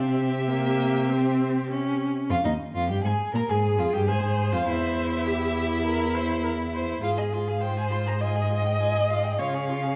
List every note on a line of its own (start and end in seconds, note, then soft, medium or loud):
0.00 2.10 C3 medium
0.00 0.43 C4 medium
0.00 2.05 G4 loud
0.00 2.00 E5 loud
0.49 1.11 A#3 medium
1.09 1.70 C4 medium
1.70 2.29 C#4 medium
2.30 2.36 F2 medium
2.30 2.36 F4 medium
2.30 2.44 F5 loud
2.44 2.52 D#2 medium
2.44 2.52 D#4 medium
2.44 2.53 D#5 medium
2.74 2.91 F2 medium
2.74 2.89 F4 medium
2.74 2.89 F5 loud
2.89 3.03 G2 loud
2.89 3.03 G4 medium
2.89 2.96 G5 loud
3.04 3.12 G#2 loud
3.04 3.33 G#4 medium
3.04 3.13 G#5 loud
3.34 3.40 A#2 loud
3.34 3.51 A#4 medium
3.34 3.41 A#5 loud
3.49 3.80 G#2 medium
3.49 3.80 G#4 medium
3.49 4.10 G#4 medium
3.49 3.57 G#5 loud
3.79 3.93 F2 medium
3.79 3.95 F4 medium
3.79 3.85 F5 medium
3.93 4.10 G2 medium
3.93 4.09 G4 medium
3.93 4.00 G5 loud
4.07 4.22 G#2 loud
4.07 4.22 G#4 medium
4.07 5.28 C5 medium
4.07 4.22 G#5 loud
4.22 4.54 G#2 medium
4.22 4.54 G#4 medium
4.22 4.31 G#5 loud
4.52 4.67 F2 medium
4.52 4.66 F4 medium
4.52 4.68 F5 loud
4.66 6.99 E2 medium
4.66 6.98 E4 loud
4.66 7.02 E5 loud
5.26 5.84 G4 medium
5.85 6.16 A#4 medium
6.15 6.44 C5 medium
6.44 6.52 A#4 medium
6.74 7.02 C5 medium
7.03 9.40 G#2 medium
7.03 7.19 F4 medium
7.03 7.63 G#4 medium
7.03 7.09 F5 loud
7.17 7.35 G#4 medium
7.17 7.25 D#5 medium
7.33 7.49 F4 medium
7.47 7.61 G#4 medium
7.47 7.63 F5 medium
7.61 7.79 F4 medium
7.61 8.22 C5 medium
7.61 7.76 G5 loud
7.77 7.92 G#4 medium
7.77 7.83 G#5 medium
7.91 8.08 F4 medium
7.91 7.97 C6 loud
8.06 8.20 G#4 medium
8.06 8.12 A#5 loud
8.20 8.37 F4 medium
8.20 9.41 D#5 loud
8.20 8.64 G#5 loud
8.35 8.52 G#4 medium
8.50 8.66 F4 medium
8.65 8.79 G#4 medium
8.65 8.72 G5 medium
8.80 8.96 F4 medium
8.80 8.95 G#5 loud
8.95 9.11 G#4 medium
8.95 9.01 G#5 medium
9.10 9.25 F4 medium
9.10 9.26 F5 medium
9.23 9.38 G#4 medium
9.23 9.38 G5 medium
9.38 9.96 C#3 medium
9.38 9.56 F4 medium
9.38 9.96 C#5 medium
9.38 9.96 F5 loud
9.54 9.70 G#4 medium
9.69 9.85 F4 medium
9.83 9.96 G#4 medium